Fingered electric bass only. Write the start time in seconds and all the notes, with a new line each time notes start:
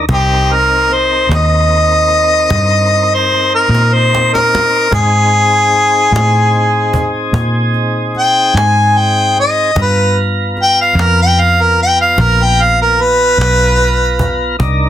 0.09 C2
1.29 D#2
2.50 G2
3.69 A#2
4.92 G#2
6.12 A2
7.33 A#2
8.54 G#2
9.76 G2
10.95 F2
12.18 A#1
13.38 B1
14.60 C2